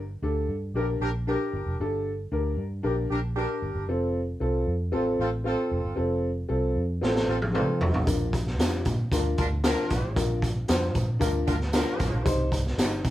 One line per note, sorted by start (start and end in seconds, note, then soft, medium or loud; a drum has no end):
0.00 0.16 G1 medium
0.22 0.45 D2 medium
0.22 0.52 D4 medium
0.22 0.52 G4 medium
0.22 0.53 A4 medium
0.48 0.71 G2 medium
0.74 0.97 A#1 medium
0.74 1.05 D4 medium
0.74 0.86 D4 medium
0.74 0.86 G4 medium
0.74 1.05 G4 medium
0.74 0.86 A#4 medium
0.74 1.05 A#4 loud
1.00 1.35 A#1 medium
1.00 1.09 D4 medium
1.00 1.09 G4 medium
1.00 1.09 A#4 loud
1.27 1.57 D4 medium
1.27 1.77 D4 medium
1.27 1.57 G4 medium
1.27 1.77 G4 medium
1.27 1.57 A#4 medium
1.27 1.77 A#4 medium
1.53 1.65 G1 medium
1.66 1.78 F1 medium
1.80 2.26 G1 loud
1.80 2.10 D4 medium
1.80 2.10 G4 medium
1.80 2.10 A4 medium
2.32 2.55 D2 medium
2.32 2.61 D4 medium
2.32 2.62 G4 medium
2.32 2.62 A#4 medium
2.58 2.81 G2 medium
2.83 3.07 A#1 medium
2.83 3.13 D4 medium
2.83 2.95 D4 medium
2.83 3.14 G4 medium
2.83 2.95 G4 medium
2.83 3.14 A#4 loud
2.83 2.95 A#4 medium
3.10 3.45 A#1 medium
3.10 3.19 D4 medium
3.10 3.19 G4 medium
3.10 3.19 A#4 medium
3.36 3.66 D4 medium
3.36 3.86 D4 medium
3.36 3.86 G4 medium
3.36 3.66 G4 medium
3.36 3.86 A#4 loud
3.36 3.67 A#4 medium
3.62 3.74 G1 medium
3.75 3.88 G1 loud
3.88 4.34 F1 medium
3.88 4.18 C4 medium
3.88 4.19 F4 medium
3.88 4.19 A4 medium
4.40 4.64 C2 medium
4.40 4.70 C4 medium
4.40 4.71 F4 medium
4.40 4.71 A4 medium
4.67 4.93 F2 medium
4.92 5.16 A1 medium
4.92 5.22 C4 medium
4.92 5.04 C4 medium
4.92 5.23 F4 medium
4.92 5.04 F4 medium
4.92 5.23 A4 loud
4.92 5.04 A4 medium
5.19 5.54 A1 medium
5.19 5.28 C4 medium
5.19 5.28 F4 medium
5.19 5.28 A4 loud
5.44 5.75 C4 medium
5.44 5.95 C4 medium
5.44 5.75 F4 medium
5.44 5.95 F4 medium
5.44 5.95 A4 loud
5.44 5.75 A4 medium
5.71 5.83 F1 loud
5.85 5.96 G1 medium
5.96 6.44 F1 medium
5.96 6.27 C4 medium
5.96 6.27 F4 medium
5.96 6.27 A4 medium
6.49 6.73 C2 loud
6.49 6.79 C4 medium
6.49 6.79 F4 medium
6.49 6.79 A4 medium
6.76 6.99 F2 medium
7.01 7.25 A1 medium
7.01 7.32 C4 medium
7.01 7.14 C4 medium
7.01 7.32 F4 medium
7.01 7.14 F4 medium
7.01 7.32 A4 loud
7.01 7.14 A4 medium
7.01 snare medium
7.16 snare medium
7.28 7.63 A1 medium
7.28 7.37 C4 medium
7.28 7.37 F4 medium
7.28 7.37 A4 medium
7.42 high tom medium
7.53 7.84 C4 medium
7.53 8.04 C4 medium
7.53 7.84 F4 medium
7.53 8.04 F4 medium
7.53 7.84 A4 medium
7.53 8.04 A4 medium
7.53 mid tom medium
7.81 7.92 F1 medium
7.81 floor tom loud
7.94 8.06 A1 medium
7.94 floor tom medium
8.06 8.60 A#1 loud
8.06 8.37 D4 medium
8.06 8.37 F4 medium
8.06 8.37 A#4 medium
8.06 kick loud
8.06 closed hi-hat loud
8.06 tambourine medium
8.33 kick loud
8.33 closed hi-hat medium
8.33 tambourine soft
8.47 snare soft
8.59 8.83 F2 medium
8.59 8.89 D4 medium
8.59 8.89 F4 medium
8.59 8.89 G4 medium
8.59 snare loud
8.59 closed hi-hat medium
8.59 tambourine loud
8.85 9.09 A#2 medium
8.85 kick loud
8.85 closed hi-hat medium
8.85 tambourine medium
9.11 9.35 D2 medium
9.11 9.42 D4 medium
9.11 9.23 D4 medium
9.11 9.42 F4 medium
9.11 9.23 F4 medium
9.11 9.23 A#4 medium
9.11 9.42 A#4 loud
9.11 kick medium
9.11 closed hi-hat medium
9.11 tambourine loud
9.38 9.73 D2 medium
9.38 9.46 D4 medium
9.38 9.46 F4 medium
9.38 9.46 A#4 medium
9.38 kick medium
9.38 closed hi-hat medium
9.38 tambourine medium
9.64 9.94 D4 medium
9.64 10.14 D4 medium
9.64 9.94 F4 medium
9.64 10.14 F4 medium
9.64 10.14 A#4 loud
9.64 9.94 A#4 medium
9.64 snare loud
9.64 closed hi-hat medium
9.64 tambourine loud
9.90 10.02 A#1 loud
9.90 kick medium
9.90 snare soft
9.90 closed hi-hat medium
9.90 tambourine medium
10.04 10.15 A1 medium
10.15 10.62 A#1 loud
10.15 10.46 D4 medium
10.15 10.46 F4 medium
10.15 10.46 A#4 medium
10.15 kick loud
10.15 closed hi-hat loud
10.15 tambourine medium
10.42 kick medium
10.42 closed hi-hat medium
10.42 tambourine soft
10.68 10.95 F2 medium
10.68 10.98 D4 medium
10.68 10.98 F4 medium
10.68 10.99 C5 medium
10.68 snare loud
10.68 closed hi-hat medium
10.68 tambourine loud
10.95 11.18 A#2 medium
10.95 kick loud
10.95 closed hi-hat medium
10.95 tambourine medium
11.19 11.44 D2 medium
11.19 11.50 D4 loud
11.19 11.32 D4 medium
11.19 11.50 F4 medium
11.19 11.32 F4 medium
11.19 11.32 A#4 medium
11.19 11.51 A#4 loud
11.19 kick medium
11.19 closed hi-hat medium
11.19 tambourine loud
11.47 11.82 D2 medium
11.47 11.55 D4 medium
11.47 11.56 F4 medium
11.47 11.56 A#4 medium
11.47 kick medium
11.47 closed hi-hat medium
11.47 tambourine medium
11.61 snare soft
11.73 12.03 D4 medium
11.73 12.24 D4 medium
11.73 12.23 F4 medium
11.73 12.03 F4 medium
11.73 12.23 A#4 loud
11.73 12.04 A#4 medium
11.73 snare loud
11.73 closed hi-hat medium
11.73 tambourine loud
11.99 12.11 A#1 loud
11.99 kick medium
11.99 snare soft
11.99 closed hi-hat medium
11.99 tambourine medium
12.13 12.24 A#1 medium
12.25 12.72 C2 loud
12.25 12.55 D#4 medium
12.25 12.55 G4 medium
12.25 12.56 C5 medium
12.25 kick loud
12.25 closed hi-hat medium
12.25 tambourine medium
12.52 kick medium
12.52 closed hi-hat medium
12.52 tambourine medium
12.66 snare soft
12.78 13.01 G1 medium
12.78 13.08 D#4 medium
12.78 13.08 G4 medium
12.78 13.08 D#5 medium
12.78 snare loud
12.78 closed hi-hat medium
12.78 tambourine loud
13.04 13.10 C3 medium
13.04 kick medium
13.04 closed hi-hat medium
13.04 tambourine medium